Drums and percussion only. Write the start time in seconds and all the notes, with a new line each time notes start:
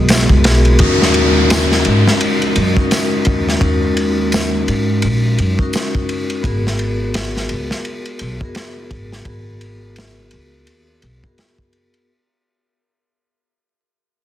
0.09 snare, ride, tambourine
0.29 kick
0.44 snare, ride
0.65 ride
0.79 kick, ride
1.02 snare
1.14 ride
1.50 snare, ride, tambourine
1.72 snare
1.85 ride
2.08 snare
2.21 ride
2.42 ride
2.56 ride
2.77 kick
2.91 snare, ride, tambourine
3.25 kick, ride
3.49 snare
3.61 kick, ride
3.97 ride
4.32 snare, ride, tambourine
4.68 ride
5.02 ride
5.39 ride
5.59 kick
5.73 snare, ride, tambourine
5.95 kick
6.09 ride
6.30 ride
6.44 kick, ride
6.67 snare
6.79 ride
7.14 snare, ride
7.37 snare
7.49 ride
7.71 snare
7.85 ride
8.05 ride
8.19 ride
8.41 kick
8.55 snare, ride
8.91 kick, ride
9.12 snare
9.25 kick, ride
9.61 ride
9.96 snare, ride
10.31 ride
10.67 ride
11.02 ride
11.24 kick
11.38 snare, ride
11.58 kick
11.73 ride
11.94 ride